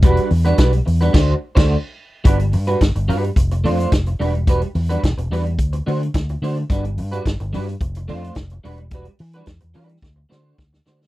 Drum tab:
CC |--------x--x----|----------------|----------------|----------------|
HH |xxoxxxox--------|xxoxxxoxxxoxxxox|xxoxxxoxxxoxxxox|xxoxxxoxxxoxxxox|
SD |----o---o--o----|----o-------o---|----o-------o---|----o-------o---|
BD |o---o---o--o----|o---o---o---o---|o---o---o---o---|o---o---o---o---|

CC |----------------|
HH |xxoxxxox--------|
SD |----o---o-o-oooo|
BD |o---o---o---o---|